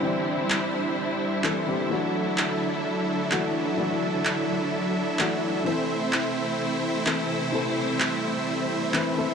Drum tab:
CP |--x---x-|--x---x-|--x---x-|--x---x-|

CP |--x---x-|